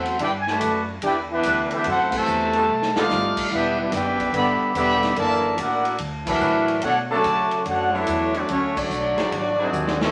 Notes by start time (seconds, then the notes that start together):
Already playing: E2 F#3 A3 C4 E4 F#4 A4 C5 F#5
0.05 ride
0.19 G2 D4 E4 G4 B4 D5 G5, ride
0.40 G#5
0.47 A3 F#4 B4 D5 A5, snare
0.61 F#2, hi-hat pedal, ride
1.02 E2 D4 E4 G4 B4 D5 G5, ride
1.31 E3 B3 D4 E4 G4 B4 E5
1.43 D2 G3 D4 E4 B4, hi-hat pedal, ride
1.71 E3 B3 E4 G4 B4, ride
1.75 D4 E5
1.84 F#2 A3 C4 E4 F#4 C5 F#5, ride
1.89 A4
2.12 C3 E3 A3, kick, crash
2.16 F#4 C5 E5 A5
2.26 E2, hi-hat pedal
2.53 G3 B3 D#4 A4, ride
2.68 B1
2.82 snare
2.95 G3 A3 B3 D#4 F4 A4 D5 F5, snare
3.09 G1, snare, hi-hat pedal
3.37 muted upright bass stroke, kick, crash
3.51 E1 G3 B3 D4 E4 G4 B4 E5
3.79 G3 B3 D4 E4 G4 B4 E5
3.92 F#1 B3 D4 E4 G4 B4 D5 G5, snare, hi-hat pedal, ride
4.20 kick, ride
4.33 G1 D3 G3 B3 G4 D5 E5 B5, ride
4.75 E1 D3 E3 G3 B3 D4 G4 D5 E5 B5, hi-hat pedal, ride
5.03 snare, ride
5.16 F#1 D3 E3 A#3 E4 A#4 D5 A5, ride
5.58 A1 A#3 D4 E4 F#4 A#4 D5 F#5, hi-hat pedal, ride
5.85 ride
5.98 D2, ride
6.27 E3 F#3 D4 E4 A4 A#4 E5, kick, crash
6.40 A2 E3 F#3 D4 F#4, hi-hat pedal
6.68 ride
6.82 B2 A3 D4 F#4 A4 C#5 F#5, ride
7.10 C#3 D3 F#3 A3 B3 C#4 F#4 A4 C#5 D5 A5
7.24 C#3, hi-hat pedal, ride
7.51 ride
7.65 F#2 A3 D4 F#4 A4 C#5 F#5, ride
7.94 D3 F#3 A3 B3 D4 E4 A4 C#5 E5
8.07 E2, hi-hat pedal, ride
8.34 F#3 A3 C#4 D4 F#4 D5, ride
8.49 D2 F#3 A3 C#4 D4 F#4 C#5, ride
8.76 F#3 A3 D4 F#4 C#5 D5, kick, crash
8.90 B1, hi-hat pedal
9.17 F#3 C4 E4 G#4, snare, ride
9.31 G#1, ride
9.59 C3 D#3 F#3 G#3 C4 E4 F#4 G#4
9.73 D#2, hi-hat pedal
9.87 snare
10.01 B2 E3 G3 A3 C#4 E4 A4, snare